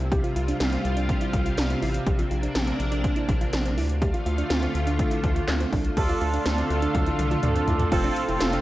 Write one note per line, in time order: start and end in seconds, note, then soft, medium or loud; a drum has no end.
0.00 0.21 C2 medium
0.00 3.73 C3 medium
0.00 2.04 G3 medium
0.00 2.04 F4 medium
0.11 0.21 G4 medium
0.11 kick loud
0.11 closed hi-hat medium
0.24 0.33 F4 medium
0.24 closed hi-hat medium
0.36 0.53 C2 loud
0.36 0.45 F4 medium
0.36 closed hi-hat medium
0.48 0.57 D4 medium
0.48 closed hi-hat medium
0.60 0.77 C2 loud
0.60 0.69 C4 medium
0.60 snare loud
0.60 closed hi-hat medium
0.72 0.91 C4 medium
0.72 closed hi-hat soft
0.85 1.10 C2 loud
0.85 closed hi-hat medium
0.97 1.15 D4 medium
0.97 closed hi-hat medium
1.09 kick medium
1.09 closed hi-hat medium
1.21 1.40 E4 medium
1.21 closed hi-hat medium
1.33 1.51 C2 medium
1.33 kick medium
1.33 closed hi-hat medium
1.46 1.55 F4 medium
1.46 closed hi-hat medium
1.57 1.75 C2 loud
1.57 1.67 D4 medium
1.57 snare loud
1.57 closed hi-hat medium
1.70 1.79 C4 medium
1.70 closed hi-hat medium
1.82 1.99 A1 medium
1.82 2.01 E4 medium
1.82 open hi-hat medium
1.94 closed hi-hat medium
2.07 2.24 A#1 loud
2.07 3.76 A#3 medium
2.07 3.76 D4 medium
2.07 2.16 G4 loud
2.07 kick loud
2.07 closed hi-hat medium
2.19 2.28 F4 medium
2.19 closed hi-hat medium
2.31 2.48 A#1 loud
2.31 2.40 F4 medium
2.31 closed hi-hat medium
2.43 2.52 D4 medium
2.43 closed hi-hat medium
2.55 2.72 A#1 loud
2.55 2.65 C4 medium
2.55 snare loud
2.55 closed hi-hat medium
2.68 2.86 C4 medium
2.68 closed hi-hat soft
2.80 3.05 A#1 loud
2.80 closed hi-hat medium
2.92 3.10 D4 medium
2.92 closed hi-hat medium
3.04 kick medium
3.04 closed hi-hat medium
3.16 3.35 E4 medium
3.16 closed hi-hat medium
3.29 3.46 A#1 loud
3.29 kick medium
3.29 closed hi-hat medium
3.41 3.50 F4 medium
3.41 closed hi-hat medium
3.53 3.79 A#1 loud
3.53 3.62 D4 medium
3.53 snare loud
3.53 closed hi-hat medium
3.65 3.74 C4 medium
3.65 closed hi-hat medium
3.77 4.11 D2 loud
3.77 5.95 D3 medium
3.77 5.95 A3 medium
3.77 3.96 E4 medium
3.77 5.95 F4 medium
3.77 open hi-hat medium
3.89 closed hi-hat soft
4.02 4.11 G4 loud
4.02 kick loud
4.02 closed hi-hat medium
4.14 4.23 F4 medium
4.14 closed hi-hat medium
4.26 4.43 D2 loud
4.26 4.35 F4 medium
4.26 closed hi-hat medium
4.38 4.47 D4 medium
4.38 closed hi-hat medium
4.50 4.68 D2 loud
4.50 4.60 C4 medium
4.50 snare loud
4.50 closed hi-hat medium
4.63 4.81 C4 medium
4.63 closed hi-hat soft
4.75 5.00 D2 loud
4.75 closed hi-hat medium
4.87 5.05 D4 medium
4.87 closed hi-hat medium
4.99 kick medium
4.99 closed hi-hat medium
5.11 5.30 E4 medium
5.11 closed hi-hat medium
5.24 5.41 D2 loud
5.24 kick medium
5.24 closed hi-hat medium
5.36 5.45 F4 medium
5.36 closed hi-hat medium
5.48 5.65 D2 loud
5.48 5.57 D4 medium
5.48 snare loud
5.48 clap medium
5.48 closed hi-hat medium
5.60 5.69 C4 medium
5.60 closed hi-hat medium
5.72 5.90 C2 loud
5.72 5.91 D4 medium
5.72 kick medium
5.72 open hi-hat medium
5.84 closed hi-hat medium
5.97 6.14 D2 loud
5.97 7.90 D3 medium
5.97 7.90 A3 medium
5.97 7.88 D4 medium
5.97 7.88 F4 medium
5.97 7.90 F4 medium
5.97 6.06 G4 loud
5.97 7.88 A4 medium
5.97 kick loud
5.97 closed hi-hat medium
5.97 crash loud
6.09 6.18 F4 medium
6.09 closed hi-hat medium
6.21 6.38 D2 loud
6.21 6.30 F4 medium
6.21 closed hi-hat medium
6.33 6.43 D4 medium
6.33 closed hi-hat medium
6.45 6.63 D2 loud
6.45 6.55 C4 medium
6.45 snare loud
6.45 closed hi-hat medium
6.58 6.76 C4 medium
6.58 closed hi-hat soft
6.70 6.87 D2 loud
6.70 closed hi-hat medium
6.82 7.01 D4 medium
6.82 closed hi-hat medium
6.94 7.12 D2 loud
6.94 kick medium
6.94 closed hi-hat medium
6.94 high tom medium
7.06 7.25 E4 medium
7.06 closed hi-hat medium
7.19 7.36 C2 medium
7.19 closed hi-hat medium
7.19 mid tom medium
7.31 7.40 F4 medium
7.31 closed hi-hat medium
7.31 mid tom medium
7.43 7.60 D2 loud
7.43 7.52 D4 medium
7.43 closed hi-hat medium
7.43 mid tom medium
7.55 7.65 C4 medium
7.55 closed hi-hat medium
7.68 7.85 D2 loud
7.68 7.86 E4 medium
7.68 closed hi-hat medium
7.68 floor tom loud
7.80 closed hi-hat medium
7.80 floor tom medium
7.92 8.09 F1 loud
7.92 8.61 C3 medium
7.92 8.61 A3 medium
7.92 8.61 C4 medium
7.92 8.01 F4 loud
7.92 8.61 F4 medium
7.92 8.61 F4 loud
7.92 8.61 A4 medium
7.92 kick loud
7.92 closed hi-hat medium
7.92 crash loud
8.04 8.22 D4 medium
8.04 closed hi-hat medium
8.16 closed hi-hat medium
8.29 8.37 F1 loud
8.29 8.38 E4 medium
8.29 closed hi-hat medium
8.41 8.58 F1 loud
8.41 8.50 F4 medium
8.41 snare loud
8.41 closed hi-hat medium
8.53 8.61 D4 medium
8.53 closed hi-hat soft